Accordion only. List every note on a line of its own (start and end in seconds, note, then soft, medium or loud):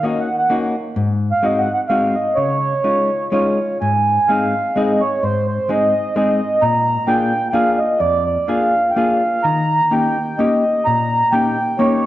0.03 0.19 D#5 medium
0.20 0.35 F#5 medium
0.37 0.58 F#5 medium
1.31 1.45 F5 medium
1.45 1.60 D#5 medium
1.59 1.72 F#5 medium
1.74 1.81 F#5 medium
1.89 2.15 F5 medium
2.15 2.38 D#5 medium
2.35 3.28 C#5 medium
3.32 3.78 C#5 medium
3.81 4.30 G#5 medium
4.28 4.77 F5 medium
4.76 5.01 D#5 medium
5.00 5.23 C#5 medium
5.23 5.46 C5 medium
5.48 5.70 C5 medium
5.70 6.15 D#5 medium
6.17 6.64 D#5 medium
6.62 7.10 A#5 loud
7.08 7.48 G5 loud
7.50 7.79 F5 medium
7.50 7.55 G5 medium
7.79 8.00 D#5 medium
7.99 8.24 D5 loud
8.26 8.49 D5 medium
8.48 8.91 F5 medium
8.91 8.97 G5 medium
8.95 9.45 F5 medium
9.43 9.93 A#5 loud
9.92 10.40 G5 medium
10.38 10.87 D#5 medium
10.85 11.34 A#5 loud
11.32 11.81 G5 loud
11.79 12.06 C#5 medium